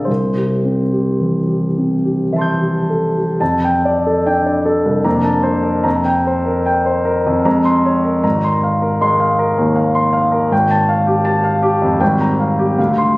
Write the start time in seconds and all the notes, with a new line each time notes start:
Already playing: D3 C4 G#4 A#4 D5
0.05 C2 C5
0.36 G4
0.64 C4
0.92 G4
1.20 E3
1.48 G4
1.78 C4
2.04 G4
2.33 E3 E5 A5
2.38 C6 G6
2.61 G4
2.90 A4
3.17 G4
3.40 F2 A5
3.64 G5
3.85 D5
4.06 A4
4.26 D4 G5
4.46 D5
4.66 A4
4.85 C2
5.04 F2 A#3 C4 D4 A#5
5.24 A5
5.43 C5
5.63 A#4
5.84 F2 A#5
6.05 G5
6.27 C5
6.46 A#4
6.66 G5
6.86 C5
7.05 A#4
7.26 F2
7.45 F2 G#3 C4 A#5
7.65 C6
7.85 C#5
8.05 A#4
8.24 G#1 A#5
8.44 C6
8.63 F5
8.82 A#4
9.01 G#3 C6
9.20 F5
9.39 A#4
9.57 D#2
9.76 F5
9.95 C6
10.13 F5
10.32 A#4
10.52 G#1 G5
10.71 A5
10.89 F5
11.07 G4
11.25 A5
11.44 F5
11.63 G4
11.82 F2
12.00 G#1 G3 C4 G5
12.21 A#5
12.40 F5
12.59 G4
12.78 D2 F5
12.98 C6